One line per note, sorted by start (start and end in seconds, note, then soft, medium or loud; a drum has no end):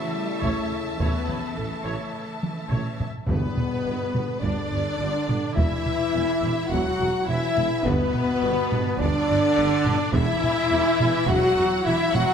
0.00 2.95 C#3 medium
0.00 0.14 E3 medium
0.00 2.99 A3 medium
0.00 0.99 E4 medium
0.00 1.00 E5 medium
0.00 3.04 E5 medium
0.00 3.04 A5 medium
0.15 0.43 G3 medium
0.42 0.51 A1 medium
0.42 0.55 A1 medium
0.42 0.71 A3 medium
0.42 0.70 C#5 medium
0.42 taiko medium
0.70 1.00 C#3 medium
0.99 1.08 A1 medium
0.99 1.12 A1 medium
0.99 2.95 E3 medium
0.99 1.56 B3 medium
0.99 1.57 B4 medium
0.99 1.27 C#5 medium
0.99 taiko loud
1.28 1.37 A1 medium
1.28 1.40 A1 soft
1.28 1.36 C#5 soft
1.28 taiko mid soft
1.55 1.68 A1 soft
1.55 1.65 A1 soft
1.55 2.70 A3 medium
1.55 2.71 A4 medium
1.55 1.65 A4 soft
1.85 1.93 A1 medium
1.85 1.97 A1 medium
1.85 2.12 C#5 medium
2.43 taiko mid medium
2.70 2.78 A1 medium
2.70 2.82 A1 medium
2.70 2.97 C#5 medium
2.70 taiko low-mid medium
3.00 taiko low medium
3.27 3.35 G1 medium
3.27 3.40 G1 medium
3.27 4.09 G2 medium
3.27 3.36 G2 medium
3.27 4.39 B2 medium
3.27 4.38 B3 medium
3.27 4.38 B4 medium
3.27 4.39 B4 medium
3.27 taiko loud
3.58 taiko low-mid medium
3.85 3.93 G1 medium
3.85 3.97 G1 medium
3.85 3.94 G2 medium
4.14 4.26 G1 medium
4.14 4.22 G1 medium
4.14 4.22 G2 medium
4.14 taiko low-mid medium
4.40 4.51 G1 medium
4.40 4.54 G1 medium
4.40 4.51 G2 medium
4.40 5.55 D3 loud
4.40 5.56 D4 medium
4.40 5.54 D4 medium
4.40 5.56 D5 medium
4.40 5.54 D5 medium
4.40 5.56 D5 medium
4.40 taiko medium
4.71 4.79 G1 medium
4.71 4.83 G1 medium
4.71 4.80 G2 medium
5.00 5.08 G1 medium
5.00 5.11 G1 medium
5.00 5.08 G2 medium
5.28 5.36 G1 medium
5.28 5.40 G1 medium
5.28 5.36 G2 medium
5.28 taiko low-mid medium
5.54 5.68 E1 medium
5.54 5.65 E1 medium
5.54 5.65 E2 medium
5.54 6.72 E3 loud
5.54 6.68 E4 loud
5.54 6.71 E4 medium
5.54 6.72 E5 medium
5.54 6.68 E5 medium
5.54 6.69 E5 loud
5.54 taiko loud
5.86 taiko low-mid medium
6.14 6.26 E1 medium
6.14 6.22 E1 medium
6.14 6.22 E2 medium
6.41 6.53 E1 medium
6.41 6.50 E1 medium
6.41 6.50 E2 medium
6.41 taiko low-mid medium
6.70 6.82 E1 medium
6.70 6.79 E1 loud
6.70 6.79 E2 medium
6.70 7.27 F#3 loud
6.70 7.28 F#4 loud
6.70 7.27 F#5 medium
6.70 7.26 F#5 loud
6.70 7.28 F#5 medium
6.70 taiko medium
6.99 7.11 E1 medium
6.99 7.08 E1 medium
6.99 7.08 E2 medium
7.26 7.39 E1 medium
7.26 7.37 E1 medium
7.26 7.37 E2 medium
7.26 7.85 E3 medium
7.26 7.85 E4 loud
7.26 7.84 E4 loud
7.26 7.83 E5 loud
7.26 7.85 E5 loud
7.26 7.84 E5 medium
7.57 7.68 E1 medium
7.57 7.65 E1 medium
7.57 7.66 E2 medium
7.57 taiko low-mid medium
7.83 7.97 G1 loud
7.83 7.93 G1 loud
7.83 7.94 G2 loud
7.83 8.98 B2 loud
7.83 8.99 B3 loud
7.83 8.98 B3 loud
7.83 9.01 B4 medium
7.83 8.99 B4 medium
7.83 9.00 B4 loud
7.83 taiko loud
8.15 taiko low-mid medium
8.43 8.51 G1 medium
8.43 8.54 G1 medium
8.43 8.51 G2 medium
8.71 8.83 G1 medium
8.71 8.80 G1 medium
8.71 8.80 G2 medium
8.71 taiko low-mid medium
8.99 9.07 G1 loud
8.99 9.11 G1 loud
8.99 9.09 G2 loud
8.99 9.99 D3 loud
8.99 10.14 D4 loud
8.99 10.12 D4 loud
8.99 9.86 D5 loud
8.99 10.14 D5 loud
8.99 10.12 D5 loud
8.99 taiko medium
9.29 9.37 G1 medium
9.29 9.40 G1 medium
9.29 9.37 G2 medium
9.57 9.69 G1 medium
9.57 9.66 G1 medium
9.57 9.65 G2 medium
9.85 9.93 G1 medium
9.85 9.98 G1 medium
9.85 9.94 G2 medium
9.85 taiko low-mid medium
10.13 10.22 E1 loud
10.13 10.26 E1 loud
10.13 10.22 E2 loud
10.13 11.27 E3 loud
10.13 11.25 E4 loud
10.13 11.29 E4 loud
10.13 11.24 E5 loud
10.13 11.26 E5 loud
10.13 11.27 E5 loud
10.13 taiko loud
10.44 taiko low-mid medium
10.71 10.79 E1 medium
10.71 10.83 E1 medium
10.71 10.80 E2 medium
11.00 11.08 E1 medium
11.00 11.12 E1 medium
11.00 11.08 E2 medium
11.00 taiko low-mid medium
11.27 11.36 E1 loud
11.27 11.40 E1 loud
11.27 11.37 E2 loud
11.27 11.86 F#3 loud
11.27 11.68 F#4 loud
11.27 11.85 F#4 loud
11.27 11.85 F#5 loud
11.27 11.86 F#5 loud
11.27 taiko medium
11.56 11.64 E1 medium
11.56 11.68 E1 medium
11.56 11.66 E2 medium
11.84 11.93 E1 medium
11.84 11.97 E1 medium
11.84 11.95 E2 medium
11.84 12.13 E3 loud
11.84 12.13 E4 loud
11.84 12.14 E4 loud
11.84 12.14 E5 loud
11.84 12.13 E5 loud
11.84 12.14 E5 loud
12.13 12.22 E1 medium
12.13 12.26 E1 medium
12.13 12.23 E2 medium
12.13 12.34 F#3 loud
12.13 12.34 F#4 loud
12.13 12.34 F#5 loud
12.13 taiko low-mid medium